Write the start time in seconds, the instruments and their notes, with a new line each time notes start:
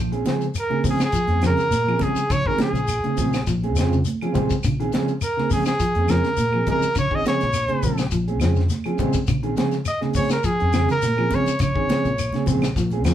Already playing: fingered electric bass A#1, clean electric guitar F3
0.12 clean electric guitar C4 C#4 G#4, muted clean electric guitar stroke, closed hi-hat
0.25 reed electric piano C#3 F3 G#3 C4, clean electric guitar F3 C4 G#4, muted clean electric guitar stroke, snare, closed hi-hat, high conga, shekere
0.41 closed hi-hat, shekere
0.55 closed hi-hat, high conga, claves, shekere
0.59 trumpet A#4
0.70 clean electric guitar C#3 C4 C#4 G#4, high conga
0.84 reed electric piano C#3 F3 G#3 C4, clean electric guitar F3 C4 C#4 G#4, kick, open hi-hat, high conga, low conga, shekere
0.90 trumpet G#4
0.99 snare, closed hi-hat, claves, shekere
1.04 trumpet G#4
1.12 clean electric guitar F3, muted fingered electric bass stroke, kick, closed hi-hat, high conga, shekere
1.28 fingered electric bass F2, clean electric guitar C4 C#4 G#4, closed hi-hat, high conga
1.42 reed electric piano C#3 F3 G#3 C#4, clean electric guitar F3 C4 C#4 G#4, snare, closed hi-hat, claves, shekere
1.47 trumpet A#4
1.57 muted clean electric guitar stroke, snare, closed hi-hat, low conga, shekere
1.70 fingered electric bass A#2, snare, closed hi-hat, high conga, shekere
1.87 clean electric guitar F3 C4 C#4 G#4, claves
1.99 reed electric piano C#3 F3 G#3 C#4, clean electric guitar F3 G3 C4 C#4 G#4, trumpet G#4, kick, closed hi-hat, high conga, low conga, shekere
2.16 muted fingered electric bass stroke, closed hi-hat, shekere
2.29 fingered electric bass A#1, clean electric guitar C#3, trumpet C#5, kick, closed hi-hat, high conga, claves, shekere
2.46 fingered electric bass G#1, clean electric guitar D#3 C4 C#4 G#4, trumpet A#4, kick
2.58 reed electric piano C#3 F3 G#3 C4, clean electric guitar F3 C4 C#4 G#4, trumpet G#4, snare, closed hi-hat, high conga, shekere
2.73 fingered electric bass A#1, closed hi-hat, shekere
2.88 closed hi-hat, high conga, claves, shekere
3.04 clean electric guitar C#3 C4 C#4 G#4, muted fingered electric bass stroke, closed hi-hat, high conga
3.17 fingered electric bass A#1, reed electric piano C#3 F3 G#3 C4, clean electric guitar F3 C4 C#4, kick, closed hi-hat, high conga, low conga, shekere
3.21 clean electric guitar G#4
3.33 snare, closed hi-hat, claves, shekere
3.47 fingered electric bass A#1, clean electric guitar F3, kick, snare, closed hi-hat, shekere
3.63 clean electric guitar C4 C#4 G#4, closed hi-hat, high conga
3.75 fingered electric bass F2, reed electric piano C#3 F3 G#3 C4, clean electric guitar F3 C4 C#4, closed hi-hat, claves, shekere
3.79 clean electric guitar G#4, snare
3.92 clean electric guitar C#3, low conga, shekere
4.05 closed hi-hat, high conga, shekere
4.21 clean electric guitar F3 C4 C#4 G#4, closed hi-hat, claves
4.33 fingered electric bass A#1, reed electric piano C#3 F3 G#3 C4, clean electric guitar F3 G3 C4 C#4 G#4, kick, closed hi-hat, high conga, low conga, shekere
4.50 kick, closed hi-hat, shekere
4.63 fingered electric bass A#1, clean electric guitar C#3, kick, closed hi-hat, high conga, claves, shekere
4.80 clean electric guitar D#3 C4 C#4 G#4, closed hi-hat
4.92 reed electric piano C#3 F3 G#3 A#3, clean electric guitar F3 C4 C#4 G#4, snare, closed hi-hat, high conga, shekere
5.08 closed hi-hat, shekere
5.21 trumpet A#4, closed hi-hat, high conga, claves, shekere
5.37 clean electric guitar C#3 C4 C#4 G#4, snare, high conga
5.49 reed electric piano C#3 F3 G#3 C#4, clean electric guitar F3 C4 C#4, trumpet G#4, kick, open hi-hat, high conga, low conga, shekere
5.53 clean electric guitar G#4
5.65 trumpet G#4, snare, closed hi-hat, claves, shekere
5.79 clean electric guitar F3, muted fingered electric bass stroke, kick, closed hi-hat, shekere
5.95 fingered electric bass F2, clean electric guitar C4 C#4 G#4, closed hi-hat, high conga
6.07 reed electric piano C#3 F3 G#3 C#4, clean electric guitar F3 C4 C#4 G#4, trumpet A#4, snare, closed hi-hat, claves, shekere
6.24 clean electric guitar C#3, snare, closed hi-hat, shekere
6.37 fingered electric bass A#2, closed hi-hat, high conga, shekere
6.53 clean electric guitar F3 C4 G#4, muted clean electric guitar stroke, claves
6.66 reed electric piano C#3 F3 G#3 D#4, clean electric guitar F3 G3 C4 C#4 G#4, kick, closed hi-hat, high conga, low conga, shekere
6.70 trumpet A#4
6.83 muted fingered electric bass stroke, closed hi-hat, shekere
6.95 fingered electric bass A#1, clean electric guitar C#3, trumpet C#5, kick, closed hi-hat, high conga, claves, shekere
7.11 fingered electric bass G#1, clean electric guitar D#3 C4 C#4 G#4, kick
7.15 trumpet D#5
7.25 reed electric piano C#3 F3 G#3 A#3, clean electric guitar F3 C4 C#4 G#4, trumpet C#5, snare, closed hi-hat, high conga, shekere
7.41 fingered electric bass A#1, snare, closed hi-hat, shekere
7.53 snare, closed hi-hat, high conga, claves, shekere
7.68 clean electric guitar C#3 C4 C#4 G#4, closed hi-hat, high conga
7.82 fingered electric bass A#1, reed electric piano C#3 F3 G#3 C4, clean electric guitar F3 C4 C#4, kick, closed hi-hat, low conga, shekere
7.98 snare, closed hi-hat, claves, shekere
8.11 fingered electric bass A#1, clean electric guitar F3, kick, closed hi-hat, high conga, shekere
8.28 clean electric guitar C4 C#4 G#4, closed hi-hat, high conga
8.40 fingered electric bass F2, reed electric piano C#3 F3 G#3 C4, clean electric guitar F3 C4 C#4 G#4, muted clean electric guitar stroke, snare, closed hi-hat, claves, shekere
8.56 clean electric guitar C#3, snare, shekere
8.69 snare, closed hi-hat, high conga, shekere
8.84 clean electric guitar F3 C4 C#4 G#4, closed hi-hat, claves
8.98 fingered electric bass A#1, reed electric piano C#3 F3 G#3 C4, clean electric guitar F3 G3 C4 C#4 G#4, kick, closed hi-hat, high conga, low conga, shekere
9.13 kick, closed hi-hat, shekere
9.27 fingered electric bass A#1, clean electric guitar C#3, kick, closed hi-hat, high conga, claves, shekere
9.43 clean electric guitar D#3 C4 C#4 G#4, closed hi-hat
9.56 reed electric piano C#3 F3 G#3 C#4, clean electric guitar F3 C4 C#4 G#4, snare, closed hi-hat, high conga, shekere
9.71 snare, closed hi-hat, shekere
9.85 trumpet D#5, closed hi-hat, high conga, claves, shekere
10.01 clean electric guitar C#3 C4 C#4 G#4, snare, high conga
10.13 reed electric piano C#3 F3 G#3, clean electric guitar F3 C4 C#4 G#4, trumpet C#5, kick, open hi-hat, high conga, low conga, shekere
10.18 reed electric piano C4
10.29 trumpet A#4, snare, closed hi-hat, claves, shekere
10.43 clean electric guitar F3, trumpet G#4, muted fingered electric bass stroke, kick, closed hi-hat, high conga, shekere
10.60 fingered electric bass F2, clean electric guitar C4 C#4 G#4, closed hi-hat
10.73 reed electric piano C#3 F3 G#3 C#4, clean electric guitar F3 C4 C#4 G#4, snare, closed hi-hat, claves, shekere
10.88 clean electric guitar C#3, trumpet A#4, snare, closed hi-hat, low conga, shekere
11.02 fingered electric bass A#2, snare, closed hi-hat, high conga, shekere
11.17 clean electric guitar F3 C4 C#4 G#4, claves
11.31 reed electric piano C#3 F3 G#3 C4, clean electric guitar F3 C4 C#4 G#4, muted clean electric guitar stroke, kick, closed hi-hat, high conga, low conga, shekere
11.35 trumpet C#5
11.46 muted fingered electric bass stroke, closed hi-hat, shekere
11.59 fingered electric bass A#1, clean electric guitar C#3, trumpet C#5, kick, closed hi-hat, high conga, claves, shekere
11.75 fingered electric bass G#1, clean electric guitar D#3 C4 C#4 G#4, kick
11.88 reed electric piano C#3 F3 G#3 C4, clean electric guitar F3 C4 C#4 G#4, snare, closed hi-hat, high conga, shekere
12.05 fingered electric bass A#1, closed hi-hat, shekere
12.18 closed hi-hat, high conga, claves, shekere
12.33 clean electric guitar C#3 C4 C#4 G#4, muted fingered electric bass stroke, snare, closed hi-hat, high conga
12.46 fingered electric bass A#1, reed electric piano C#3 F3 G#3 C4, clean electric guitar F3 C4 C#4 G#4, kick, closed hi-hat, high conga, low conga, shekere
12.62 snare, closed hi-hat, claves, shekere
12.76 fingered electric bass A#1, clean electric guitar F3, kick, snare, closed hi-hat, high conga, shekere
12.90 clean electric guitar C4 C#4 G#4, closed hi-hat, high conga
13.04 fingered electric bass F2, reed electric piano C#3 F3 G#3 A#3, clean electric guitar F3 C4 C#4 G#4, snare, closed hi-hat, claves, shekere